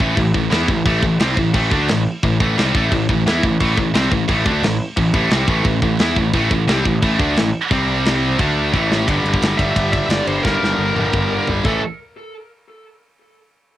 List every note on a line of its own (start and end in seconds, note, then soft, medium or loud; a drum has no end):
0.00 0.16 A1 loud
0.00 0.15 A2 loud
0.00 0.16 E3 loud
0.00 0.18 A3 loud
0.00 kick loud
0.16 0.33 A1 medium
0.16 0.31 A2 medium
0.16 0.31 E3 medium
0.16 kick loud
0.16 crash medium
0.34 0.51 A1 medium
0.34 0.48 A2 medium
0.34 0.48 E3 medium
0.34 kick loud
0.51 0.68 E2 loud
0.51 0.68 E3 medium
0.51 0.68 B3 loud
0.51 0.68 E4 loud
0.51 snare loud
0.51 crash medium
0.68 0.85 A1 medium
0.68 0.83 A2 medium
0.68 0.83 E3 medium
0.68 kick medium
0.85 1.02 A1 loud
0.85 1.01 A2 medium
0.85 1.01 E3 loud
0.85 1.03 A3 loud
0.85 kick loud
0.85 crash medium
1.02 1.19 A1 medium
1.02 1.16 A2 medium
1.02 1.16 E3 medium
1.02 kick loud
1.20 1.36 C2 loud
1.20 1.37 C3 loud
1.20 1.37 G3 loud
1.20 1.37 C4 loud
1.20 snare loud
1.20 crash medium
1.37 1.53 A1 medium
1.37 1.51 A2 medium
1.37 1.51 E3 medium
1.37 kick loud
1.54 1.70 A1 loud
1.54 1.71 A2 medium
1.54 1.71 E3 loud
1.54 1.71 A3 loud
1.54 kick loud
1.54 crash medium
1.71 1.88 D2 loud
1.71 1.88 D3 loud
1.71 1.88 A3 loud
1.71 1.88 D4 loud
1.71 kick loud
1.88 2.06 A1 medium
1.88 2.03 A2 medium
1.88 2.03 E3 medium
1.88 snare loud
1.88 crash medium
2.23 2.39 A1 medium
2.23 2.37 A2 medium
2.23 2.37 E3 medium
2.23 kick loud
2.23 crash medium
2.40 2.56 A1 loud
2.40 2.57 A2 medium
2.40 2.57 E3 medium
2.40 2.58 A3 loud
2.40 kick loud
2.57 2.74 C2 loud
2.57 2.74 C3 loud
2.57 2.74 G3 medium
2.57 2.74 C4 loud
2.57 snare loud
2.57 crash medium
2.75 2.90 A1 medium
2.75 2.91 A2 loud
2.75 2.92 E3 loud
2.75 2.92 A3 loud
2.75 kick loud
2.91 3.07 A1 medium
2.91 3.06 A2 medium
2.91 3.06 E3 medium
2.91 kick loud
2.91 crash medium
3.09 3.25 A1 medium
3.09 3.23 A2 medium
3.09 3.23 E3 medium
3.09 kick medium
3.26 3.42 E2 medium
3.26 3.42 E3 medium
3.26 3.43 B3 loud
3.26 3.43 E4 loud
3.26 snare loud
3.26 crash medium
3.43 3.59 A1 medium
3.43 3.57 A2 medium
3.43 3.57 E3 medium
3.43 kick medium
3.60 3.76 A1 loud
3.60 3.76 A2 medium
3.60 3.76 E3 loud
3.60 3.78 A3 loud
3.60 kick loud
3.60 crash medium
3.77 3.93 A1 medium
3.77 3.91 A2 medium
3.77 3.91 E3 medium
3.77 kick loud
3.94 4.10 C2 loud
3.94 4.11 C3 medium
3.94 4.11 G3 medium
3.94 4.11 C4 loud
3.94 snare loud
3.94 crash medium
4.11 4.27 A1 medium
4.11 4.25 A2 medium
4.11 4.25 E3 medium
4.11 kick loud
4.28 4.44 A1 medium
4.28 4.45 A2 loud
4.28 4.45 E3 medium
4.28 4.45 A3 loud
4.28 kick loud
4.28 crash medium
4.46 4.62 D2 loud
4.46 4.62 D3 loud
4.46 4.62 A3 loud
4.46 4.63 D4 loud
4.46 kick loud
4.63 4.78 A1 medium
4.63 4.76 A2 medium
4.63 4.76 E3 medium
4.63 snare loud
4.63 crash medium
4.96 5.13 A1 medium
4.96 5.10 A2 medium
4.96 5.10 E3 medium
4.96 kick loud
4.96 crash medium
5.14 5.30 A1 medium
5.14 5.30 A2 medium
5.14 5.31 E3 loud
5.14 5.31 A3 loud
5.14 kick loud
5.30 5.47 C2 loud
5.30 5.47 C3 medium
5.30 5.48 G3 loud
5.30 5.48 C4 loud
5.30 snare loud
5.30 crash medium
5.48 5.64 A1 medium
5.48 5.64 A2 loud
5.48 5.64 E3 loud
5.48 5.65 A3 loud
5.48 kick loud
5.64 5.81 A1 medium
5.64 5.79 A2 medium
5.64 5.79 E3 medium
5.64 kick medium
5.64 crash medium
5.82 5.98 A1 medium
5.82 5.96 A2 medium
5.82 5.96 E3 medium
5.82 kick medium
5.99 6.15 E2 loud
5.99 6.16 E3 loud
5.99 6.17 B3 loud
5.99 6.17 E4 loud
5.99 snare loud
5.99 crash medium
6.16 6.32 A1 medium
6.16 6.30 A2 medium
6.16 6.31 E3 medium
6.16 kick medium
6.33 6.50 A1 loud
6.33 6.50 A2 loud
6.33 6.51 E3 loud
6.33 6.51 A3 loud
6.33 kick loud
6.33 crash medium
6.51 6.66 A1 medium
6.51 6.65 A2 medium
6.51 6.65 E3 medium
6.51 kick loud
6.68 6.83 C2 loud
6.68 6.84 C3 loud
6.68 6.85 G3 loud
6.68 6.85 C4 loud
6.68 snare loud
6.68 crash medium
6.85 7.01 A1 medium
6.85 6.99 A2 medium
6.85 6.99 E3 medium
6.85 kick loud
7.02 7.18 A1 loud
7.02 7.19 A2 medium
7.02 7.19 E3 loud
7.02 7.19 A3 loud
7.02 kick loud
7.02 crash medium
7.19 7.35 D2 loud
7.19 7.36 D3 loud
7.19 7.36 A3 loud
7.19 7.36 D4 loud
7.19 kick loud
7.36 7.52 A1 medium
7.36 7.50 A2 medium
7.36 7.51 E3 medium
7.36 snare loud
7.36 crash medium
7.71 8.35 C2 loud
7.71 8.39 C3 medium
7.71 8.39 G3 loud
7.71 8.39 C4 loud
7.71 kick loud
7.71 crash medium
8.05 snare loud
8.05 crash medium
8.39 8.71 D2 loud
8.39 8.73 D3 medium
8.39 8.73 A3 loud
8.39 8.74 D4 loud
8.39 kick loud
8.39 crash medium
8.73 9.05 A1 loud
8.73 9.07 A2 loud
8.73 9.07 E3 loud
8.73 9.07 A3 loud
8.73 kick medium
8.92 snare medium
9.07 9.19 G1 loud
9.07 9.62 G2 medium
9.07 9.58 D3 loud
9.07 9.59 G3 medium
9.07 kick loud
9.07 ride medium
9.24 9.35 G1 medium
9.24 ride medium
9.34 kick medium
9.42 9.53 G1 medium
9.42 snare loud
9.42 ride loud
9.58 9.70 G1 medium
9.58 10.45 D3 medium
9.58 10.44 G3 medium
9.58 9.91 E5 loud
9.58 kick medium
9.58 ride medium
9.62 10.43 G2 medium
9.76 9.99 G1 medium
9.76 kick loud
9.76 ride medium
9.93 10.10 E5 medium
9.93 kick medium
9.93 ride medium
10.09 10.21 G1 medium
10.09 10.27 D5 medium
10.09 snare loud
10.09 ride medium
10.27 10.39 G1 medium
10.27 10.43 C5 medium
10.27 ride medium
10.43 10.56 G1 loud
10.43 10.95 G2 medium
10.43 10.96 D3 medium
10.43 11.47 A#4 medium
10.43 kick loud
10.43 snare medium
10.48 10.95 G3 loud
10.61 10.73 G1 medium
10.61 snare medium
10.79 10.90 G1 medium
10.96 11.07 G1 medium
10.96 11.66 G2 medium
10.96 11.65 D3 medium
10.96 11.65 G3 medium
10.96 high tom medium
11.13 11.36 G1 medium
11.13 kick loud
11.13 mid tom medium
11.47 11.59 G1 medium
11.47 floor tom medium
11.64 11.81 A1 medium
11.64 11.79 A2 medium
11.64 11.79 E3 medium
11.64 11.79 A3 medium
11.64 11.81 A4 medium
11.64 kick loud
11.64 crash medium